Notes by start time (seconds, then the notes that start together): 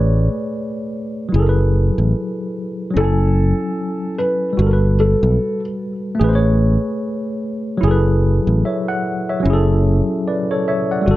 Already playing: A1 A3 G#4 B4 C#5 D5
1.29 F#3 E4
1.34 F#1 G#4
1.39 A4 A#4
1.49 B4
1.98 A1
2.90 F#3 C#4
2.96 F#1 E4 A4
3.01 A4 G#5
4.18 B4
4.53 G3
4.57 G1 F#4
4.62 A4
4.67 A#4
4.73 B4
5.00 A4
5.23 B1
6.15 A3
6.20 A1 G#4
6.24 B4
6.29 C5
6.35 C#5
7.77 F#3 E4
7.83 F#1 G#4
7.88 A4 B4
8.47 A1
8.65 C#5 E5
8.88 F#5
9.30 C#5 E5
9.40 F#3 C#4
9.45 F#1 E4
9.50 G#4 A4
10.28 B4 D5
10.51 A4 C#5
10.68 C#5 E5
10.91 D5 F#5
11.02 G3
11.06 G1 F#4
11.11 A4